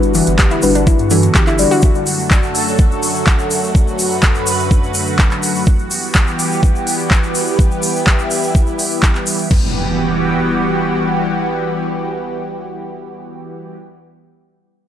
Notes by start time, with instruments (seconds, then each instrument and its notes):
Already playing: sub bass G1, analog synth pad D3 G3 B3 F#4, synth stab G3 D4 F#4 B4
0.03 closed hi-hat, shaker
0.14 synth pluck E3, open hi-hat, shaker
0.26 sub bass G1, closed hi-hat, shaker
0.39 synth pluck G4, kick, clap, closed hi-hat, shaker
0.51 synth pluck E4, closed hi-hat, shaker
0.62 sub bass G1, synth stab G3 D4 F#4 B4, open hi-hat, shaker
0.75 synth pluck D4, closed hi-hat, shaker
0.87 synth pluck E4, kick, closed hi-hat, shaker
0.99 sub bass G2, closed hi-hat, shaker
1.10 synth pluck E3, synth stab G3 D4 F#4 A4, open hi-hat, shaker
1.23 closed hi-hat, shaker
1.35 sub bass G1, synth pluck G4, kick, clap, closed hi-hat, shaker
1.47 synth pluck E4, clap, shaker
1.59 synth stab G3 D4 F#4 D5, open hi-hat, shaker
1.71 synth pluck F#4, open hi-hat, shaker
1.82 analog synth pad F#2 F#3 A3 A4, kick, shaker
1.95 shaker
2.06 open hi-hat, shaker
2.19 shaker
2.31 kick, clap, shaker
2.43 shaker
2.55 open hi-hat, shaker
2.68 shaker
2.78 kick, shaker
2.92 shaker
3.03 open hi-hat, shaker
3.16 shaker
3.27 kick, clap, shaker
3.39 shaker
3.51 open hi-hat, shaker
3.64 shaker
3.75 analog synth pad B4, kick, shaker
3.88 shaker
3.99 open hi-hat, shaker
4.11 shaker
4.22 kick, clap, shaker
4.35 shaker
4.47 open hi-hat, shaker
4.60 shaker
4.71 kick, shaker
4.83 shaker
4.94 open hi-hat, shaker
5.07 shaker
5.19 kick, clap, shaker
5.31 clap, shaker
5.43 open hi-hat, shaker
5.55 open hi-hat, shaker
5.66 analog synth pad E3 G3 B3 G4, kick, shaker
5.79 shaker
5.91 open hi-hat, shaker
6.03 shaker
6.14 kick, clap, shaker
6.27 shaker
6.39 open hi-hat, shaker
6.52 shaker
6.63 kick, shaker
6.75 shaker
6.87 open hi-hat, shaker
6.99 shaker
7.11 kick, clap, shaker
7.23 shaker
7.35 open hi-hat, shaker
7.47 shaker
7.59 analog synth pad E4, kick, shaker
7.71 shaker
7.83 open hi-hat, shaker
7.96 shaker
8.07 kick, clap, shaker
8.19 shaker
8.31 open hi-hat, shaker
8.43 shaker
8.55 kick, shaker
8.67 shaker
8.79 open hi-hat, shaker
8.91 shaker
9.03 kick, clap, shaker
9.15 clap, shaker
9.26 open hi-hat, shaker
9.39 open hi-hat, shaker
9.51 analog synth pad E3 G3 B3 F#4 G4, kick, crash, impact